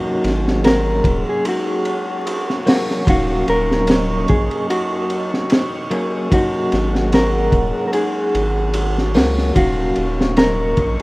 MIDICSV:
0, 0, Header, 1, 7, 480
1, 0, Start_track
1, 0, Tempo, 810811
1, 1819, Time_signature, 4, 2, 24, 8
1, 6524, End_track
2, 0, Start_track
2, 0, Title_t, "Analog synth pad"
2, 0, Program_c, 0, 89
2, 0, Note_on_c, 0, 68, 82
2, 0, Note_on_c, 0, 78, 74
2, 0, Note_on_c, 0, 85, 92
2, 1800, Note_off_c, 0, 78, 0
2, 1801, Note_off_c, 0, 68, 0
2, 1819, Note_on_c, 0, 54, 84
2, 1820, Note_on_c, 0, 75, 78
2, 3720, Note_off_c, 0, 54, 0
2, 3720, Note_off_c, 0, 75, 0
2, 3740, Note_on_c, 0, 68, 80
2, 3742, Note_on_c, 0, 78, 74
2, 5633, Note_off_c, 0, 85, 0
2, 5641, Note_off_c, 0, 68, 0
2, 5641, Note_off_c, 0, 78, 0
2, 5655, Note_on_c, 0, 85, 89
2, 5656, Note_on_c, 0, 54, 85
2, 5656, Note_on_c, 0, 75, 80
2, 6524, Note_off_c, 0, 54, 0
2, 6524, Note_off_c, 0, 75, 0
2, 6524, Note_off_c, 0, 85, 0
2, 6524, End_track
3, 0, Start_track
3, 0, Title_t, "Clean electric guitar"
3, 0, Program_c, 1, 27
3, 0, Note_on_c, 1, 66, 93
3, 381, Note_off_c, 1, 66, 0
3, 384, Note_on_c, 1, 70, 106
3, 728, Note_off_c, 1, 70, 0
3, 765, Note_on_c, 1, 68, 95
3, 870, Note_off_c, 1, 68, 0
3, 879, Note_on_c, 1, 66, 83
3, 1566, Note_off_c, 1, 66, 0
3, 1832, Note_on_c, 1, 66, 101
3, 2067, Note_off_c, 1, 66, 0
3, 2069, Note_on_c, 1, 70, 112
3, 2521, Note_off_c, 1, 70, 0
3, 2543, Note_on_c, 1, 68, 82
3, 2781, Note_off_c, 1, 68, 0
3, 2783, Note_on_c, 1, 66, 86
3, 3478, Note_off_c, 1, 66, 0
3, 3751, Note_on_c, 1, 66, 100
3, 4228, Note_off_c, 1, 66, 0
3, 4230, Note_on_c, 1, 70, 106
3, 4655, Note_off_c, 1, 70, 0
3, 4662, Note_on_c, 1, 70, 65
3, 4699, Note_off_c, 1, 70, 0
3, 4701, Note_on_c, 1, 68, 92
3, 5397, Note_off_c, 1, 68, 0
3, 5664, Note_on_c, 1, 66, 97
3, 6139, Note_off_c, 1, 66, 0
3, 6142, Note_on_c, 1, 70, 106
3, 6512, Note_off_c, 1, 70, 0
3, 6524, End_track
4, 0, Start_track
4, 0, Title_t, "Synth bell"
4, 0, Program_c, 2, 98
4, 0, Note_on_c, 2, 63, 83
4, 10, Control_c, 2, 64, 127
4, 127, Note_off_c, 2, 63, 0
4, 858, Note_on_c, 2, 63, 89
4, 1088, Note_off_c, 2, 63, 0
4, 1337, Note_on_c, 2, 66, 73
4, 1567, Note_off_c, 2, 66, 0
4, 1576, Note_on_c, 2, 70, 77
4, 1807, Note_off_c, 2, 70, 0
4, 1820, Note_on_c, 2, 63, 85
4, 1826, Control_c, 2, 64, 0
4, 1931, Control_c, 2, 64, 127
4, 2049, Note_off_c, 2, 63, 0
4, 2783, Note_on_c, 2, 63, 89
4, 3010, Note_off_c, 2, 63, 0
4, 3260, Note_on_c, 2, 66, 72
4, 3489, Note_off_c, 2, 66, 0
4, 3498, Note_on_c, 2, 70, 83
4, 3728, Note_off_c, 2, 70, 0
4, 3736, Note_on_c, 2, 63, 81
4, 3746, Control_c, 2, 64, 0
4, 3836, Control_c, 2, 64, 127
4, 3967, Note_off_c, 2, 63, 0
4, 4697, Note_on_c, 2, 63, 87
4, 4927, Note_off_c, 2, 63, 0
4, 5178, Note_on_c, 2, 66, 74
4, 5407, Note_off_c, 2, 66, 0
4, 5415, Note_on_c, 2, 70, 78
4, 5646, Note_off_c, 2, 70, 0
4, 5655, Note_on_c, 2, 63, 85
4, 5668, Control_c, 2, 64, 0
4, 5774, Control_c, 2, 64, 127
4, 5886, Note_off_c, 2, 63, 0
4, 6524, End_track
5, 0, Start_track
5, 0, Title_t, "Clean electric guitar"
5, 0, Program_c, 3, 27
5, 0, Note_on_c, 3, 54, 77
5, 0, Note_on_c, 3, 58, 73
5, 0, Note_on_c, 3, 61, 70
5, 0, Note_on_c, 3, 63, 81
5, 1548, Note_off_c, 3, 54, 0
5, 1552, Note_off_c, 3, 58, 0
5, 1557, Note_off_c, 3, 61, 0
5, 1561, Note_off_c, 3, 63, 0
5, 1576, Note_on_c, 3, 54, 78
5, 1582, Note_on_c, 3, 58, 73
5, 1587, Note_on_c, 3, 61, 74
5, 1593, Note_on_c, 3, 66, 96
5, 1791, Note_off_c, 3, 54, 0
5, 1794, Note_off_c, 3, 58, 0
5, 1797, Note_off_c, 3, 61, 0
5, 1800, Note_off_c, 3, 66, 0
5, 1806, Note_on_c, 3, 54, 78
5, 1818, Note_on_c, 3, 58, 68
5, 1826, Note_on_c, 3, 61, 69
5, 1836, Note_on_c, 3, 77, 82
5, 3466, Note_off_c, 3, 54, 0
5, 3472, Note_off_c, 3, 58, 0
5, 3476, Note_off_c, 3, 61, 0
5, 3481, Note_off_c, 3, 77, 0
5, 3496, Note_on_c, 3, 54, 87
5, 3501, Note_on_c, 3, 58, 75
5, 3505, Note_on_c, 3, 61, 77
5, 3511, Note_on_c, 3, 68, 90
5, 3711, Note_off_c, 3, 54, 0
5, 3714, Note_off_c, 3, 58, 0
5, 3716, Note_off_c, 3, 61, 0
5, 3719, Note_off_c, 3, 68, 0
5, 3731, Note_on_c, 3, 54, 73
5, 3738, Note_on_c, 3, 58, 66
5, 3749, Note_on_c, 3, 61, 70
5, 3759, Note_on_c, 3, 63, 84
5, 5389, Note_off_c, 3, 54, 0
5, 5393, Note_off_c, 3, 58, 0
5, 5398, Note_off_c, 3, 61, 0
5, 5403, Note_off_c, 3, 63, 0
5, 5415, Note_on_c, 3, 54, 77
5, 5419, Note_on_c, 3, 58, 74
5, 5424, Note_on_c, 3, 61, 73
5, 5429, Note_on_c, 3, 66, 92
5, 5631, Note_off_c, 3, 54, 0
5, 5633, Note_off_c, 3, 58, 0
5, 5635, Note_off_c, 3, 61, 0
5, 5638, Note_off_c, 3, 66, 0
5, 5643, Note_on_c, 3, 54, 75
5, 5655, Note_on_c, 3, 58, 71
5, 5664, Note_on_c, 3, 61, 69
5, 5671, Note_on_c, 3, 77, 80
5, 6524, Note_off_c, 3, 54, 0
5, 6524, Note_off_c, 3, 58, 0
5, 6524, Note_off_c, 3, 61, 0
5, 6524, Note_off_c, 3, 77, 0
5, 6524, End_track
6, 0, Start_track
6, 0, Title_t, "Analog synth bass"
6, 0, Program_c, 4, 38
6, 144, Note_on_c, 4, 32, 98
6, 601, Note_off_c, 4, 32, 0
6, 621, Note_on_c, 4, 27, 93
6, 735, Note_off_c, 4, 27, 0
6, 1821, Note_on_c, 4, 27, 95
6, 2034, Note_off_c, 4, 27, 0
6, 2062, Note_on_c, 4, 27, 105
6, 2520, Note_off_c, 4, 27, 0
6, 2545, Note_on_c, 4, 34, 90
6, 2657, Note_off_c, 4, 34, 0
6, 3984, Note_on_c, 4, 32, 102
6, 4441, Note_off_c, 4, 32, 0
6, 4455, Note_on_c, 4, 27, 87
6, 4572, Note_off_c, 4, 27, 0
6, 4942, Note_on_c, 4, 32, 101
6, 5424, Note_on_c, 4, 37, 95
6, 5433, Note_off_c, 4, 32, 0
6, 5635, Note_off_c, 4, 37, 0
6, 5661, Note_on_c, 4, 27, 89
6, 5874, Note_off_c, 4, 27, 0
6, 5905, Note_on_c, 4, 27, 104
6, 6361, Note_off_c, 4, 27, 0
6, 6378, Note_on_c, 4, 34, 89
6, 6493, Note_off_c, 4, 34, 0
6, 6524, End_track
7, 0, Start_track
7, 0, Title_t, "Drums"
7, 144, Note_on_c, 9, 51, 67
7, 159, Note_on_c, 9, 38, 43
7, 203, Note_off_c, 9, 51, 0
7, 218, Note_off_c, 9, 38, 0
7, 282, Note_on_c, 9, 38, 49
7, 341, Note_off_c, 9, 38, 0
7, 380, Note_on_c, 9, 51, 85
7, 391, Note_on_c, 9, 38, 114
7, 439, Note_off_c, 9, 51, 0
7, 451, Note_off_c, 9, 38, 0
7, 616, Note_on_c, 9, 36, 91
7, 619, Note_on_c, 9, 51, 72
7, 676, Note_off_c, 9, 36, 0
7, 678, Note_off_c, 9, 51, 0
7, 858, Note_on_c, 9, 51, 93
7, 918, Note_off_c, 9, 51, 0
7, 1096, Note_on_c, 9, 51, 65
7, 1155, Note_off_c, 9, 51, 0
7, 1343, Note_on_c, 9, 51, 94
7, 1402, Note_off_c, 9, 51, 0
7, 1479, Note_on_c, 9, 38, 41
7, 1538, Note_off_c, 9, 38, 0
7, 1580, Note_on_c, 9, 46, 87
7, 1588, Note_on_c, 9, 38, 118
7, 1639, Note_off_c, 9, 46, 0
7, 1647, Note_off_c, 9, 38, 0
7, 1721, Note_on_c, 9, 38, 38
7, 1780, Note_off_c, 9, 38, 0
7, 1818, Note_on_c, 9, 36, 119
7, 1822, Note_on_c, 9, 51, 100
7, 1877, Note_off_c, 9, 36, 0
7, 1881, Note_off_c, 9, 51, 0
7, 2059, Note_on_c, 9, 51, 65
7, 2118, Note_off_c, 9, 51, 0
7, 2198, Note_on_c, 9, 38, 52
7, 2257, Note_off_c, 9, 38, 0
7, 2292, Note_on_c, 9, 51, 93
7, 2308, Note_on_c, 9, 38, 104
7, 2352, Note_off_c, 9, 51, 0
7, 2367, Note_off_c, 9, 38, 0
7, 2534, Note_on_c, 9, 51, 64
7, 2543, Note_on_c, 9, 36, 83
7, 2593, Note_off_c, 9, 51, 0
7, 2602, Note_off_c, 9, 36, 0
7, 2669, Note_on_c, 9, 51, 47
7, 2729, Note_off_c, 9, 51, 0
7, 2783, Note_on_c, 9, 51, 91
7, 2842, Note_off_c, 9, 51, 0
7, 3018, Note_on_c, 9, 51, 60
7, 3077, Note_off_c, 9, 51, 0
7, 3159, Note_on_c, 9, 38, 40
7, 3219, Note_off_c, 9, 38, 0
7, 3254, Note_on_c, 9, 51, 90
7, 3269, Note_on_c, 9, 38, 106
7, 3313, Note_off_c, 9, 51, 0
7, 3328, Note_off_c, 9, 38, 0
7, 3499, Note_on_c, 9, 51, 69
7, 3558, Note_off_c, 9, 51, 0
7, 3739, Note_on_c, 9, 36, 109
7, 3741, Note_on_c, 9, 51, 98
7, 3798, Note_off_c, 9, 36, 0
7, 3800, Note_off_c, 9, 51, 0
7, 3978, Note_on_c, 9, 51, 70
7, 3988, Note_on_c, 9, 38, 38
7, 4037, Note_off_c, 9, 51, 0
7, 4047, Note_off_c, 9, 38, 0
7, 4115, Note_on_c, 9, 38, 44
7, 4175, Note_off_c, 9, 38, 0
7, 4217, Note_on_c, 9, 51, 90
7, 4226, Note_on_c, 9, 38, 112
7, 4277, Note_off_c, 9, 51, 0
7, 4285, Note_off_c, 9, 38, 0
7, 4453, Note_on_c, 9, 36, 88
7, 4454, Note_on_c, 9, 51, 63
7, 4512, Note_off_c, 9, 36, 0
7, 4513, Note_off_c, 9, 51, 0
7, 4694, Note_on_c, 9, 51, 81
7, 4753, Note_off_c, 9, 51, 0
7, 4941, Note_on_c, 9, 51, 69
7, 5000, Note_off_c, 9, 51, 0
7, 5171, Note_on_c, 9, 51, 99
7, 5231, Note_off_c, 9, 51, 0
7, 5317, Note_on_c, 9, 38, 43
7, 5376, Note_off_c, 9, 38, 0
7, 5413, Note_on_c, 9, 46, 80
7, 5427, Note_on_c, 9, 38, 108
7, 5472, Note_off_c, 9, 46, 0
7, 5487, Note_off_c, 9, 38, 0
7, 5554, Note_on_c, 9, 38, 40
7, 5613, Note_off_c, 9, 38, 0
7, 5658, Note_on_c, 9, 51, 90
7, 5659, Note_on_c, 9, 36, 114
7, 5717, Note_off_c, 9, 51, 0
7, 5718, Note_off_c, 9, 36, 0
7, 5894, Note_on_c, 9, 51, 59
7, 5953, Note_off_c, 9, 51, 0
7, 6042, Note_on_c, 9, 38, 63
7, 6101, Note_off_c, 9, 38, 0
7, 6137, Note_on_c, 9, 51, 77
7, 6143, Note_on_c, 9, 38, 121
7, 6196, Note_off_c, 9, 51, 0
7, 6202, Note_off_c, 9, 38, 0
7, 6375, Note_on_c, 9, 51, 63
7, 6377, Note_on_c, 9, 36, 78
7, 6434, Note_off_c, 9, 51, 0
7, 6436, Note_off_c, 9, 36, 0
7, 6524, End_track
0, 0, End_of_file